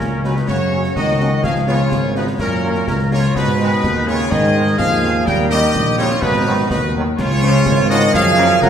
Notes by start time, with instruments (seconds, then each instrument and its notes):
Already playing: euphonium A#2, woodwind section C#4, flute section A#4, trumpet section A#4
0.00 tuba C#2, concert bass drum, snare
0.23 euphonium B2, trombone section F#3 C#4, french horn section A#3 C#4 F#4, woodwind section D#4, flute section B4, trumpet section B4, snare
0.36 snare
0.47 tuba F#2, euphonium C#3, woodwind section F#4, trumpet section C#5, flute section C#5, concert bass drum, snare
0.71 trombone section F#3 C#4, french horn section A#3 C#4 F#4
0.84 snare
0.96 tuba C#2, euphonium D#3, woodwind section F#4, trumpet section D#5, flute section D#5, concert bass drum, snare
1.08 snare
1.19 trombone section F#3 C#4, french horn section A#3 C#4 F#4, snare
1.43 tuba C#2, euphonium F3, woodwind section G#4, trumpet section F5, flute section F5, concert bass drum, snare, crash
1.56 snare
1.67 euphonium C#3, trombone section F3 B3, french horn section B3 C#4 F4, woodwind section F4, trumpet section C#5, flute section C#5, snare
1.91 tuba G#1, concert bass drum, snare
2.14 euphonium B2, trombone section F3 B3, french horn section B3 C#4 F4, woodwind section D#4, trumpet section B4, flute section B4, snare
2.27 snare
2.38 tuba F#2, euphonium A#2, woodwind section C#4, flute section A#4, trumpet section A#4, concert bass drum, snare
2.63 trombone section F#3 A#3, french horn section A#3 C#4 F#4
2.75 snare
2.87 tuba C#2, euphonium A#2, woodwind section C#4, trumpet section A#4, flute section A#4, concert bass drum, snare
2.99 snare
3.11 euphonium C#3, trombone section F#3 A#3, french horn section A#3 C#4 F#4, woodwind section F4, trumpet section C#5, flute section C#5, snare
3.34 tuba G#2, euphonium B2, woodwind section D#4, trumpet section B4, flute section B4, concert bass drum, snare, crash
3.48 snare
3.58 trombone section D#3 G#3, french horn section G#3 B3 D#4, snare
3.82 tuba D#2, concert bass drum, snare
4.06 euphonium C#3, trombone section D#3 G#3, french horn section G#3 B3 D#4, woodwind section F4, trumpet section C#5, flute section C#5, snare
4.19 snare
4.30 tuba G#2, euphonium D#3, woodwind section G#4, trumpet section D#5, flute section D#5, concert bass drum, snare
4.54 trombone section D#3 G#3, french horn section G#3 B3 D#4
4.67 snare
4.78 tuba D#2, euphonium F3, woodwind section G#4, trumpet section F5, flute section F5, concert bass drum, snare
4.91 snare
5.02 trombone section D#3 G#3, french horn section G#3 B3 D#4, snare
5.25 tuba D#2, euphonium G3, woodwind section A#4, trumpet section G5, flute section G5, concert bass drum, snare, crash
5.39 snare
5.49 euphonium D#3, trombone section D#3 G3, french horn section G3 C#4 D#4, woodwind section G4, trumpet section D#5, flute section D#5, snare
5.74 tuba A#1, concert bass drum, snare
5.97 euphonium C#3, trombone section D#3 G3, french horn section G3 C#4 D#4, woodwind section F4, trumpet section C#5, flute section C#5, snare
6.11 snare
6.21 tuba G#1, euphonium B2, woodwind section D#4, trumpet section B4, flute section B4, concert bass drum, snare
6.45 trombone section D#3 F#3, french horn section F#3 B3 D#4
6.69 tuba D#2, euphonium B2, woodwind section D#4, trumpet section B4, flute section B4, concert bass drum, snare
6.94 trombone section D#3 F#3, french horn section F#3 B3 D#4
7.17 tuba C#2, euphonium C#3, woodwind section F4, trumpet section C#5, flute section C#5, concert bass drum, snare, crash
7.31 snare
7.41 trombone section C#3 F3, french horn section F3 G#3 C#4, snare
7.66 tuba G#1, concert bass drum, snare
7.89 trombone section C#3 F3, euphonium D#3, french horn section F3 G#3 C#4, woodwind section F#4, flute section D#5, trumpet section D#5, snare
8.02 snare
8.13 tuba F#2, euphonium F3, woodwind section G#4, trumpet section F5, flute section F5, concert bass drum, snare
8.36 trombone section C#3 A#3, french horn section F#3 A#3 C#4
8.50 snare
8.61 tuba C#2, euphonium F#3, woodwind section A#4, trumpet section F#5, flute section F#5, concert bass drum, snare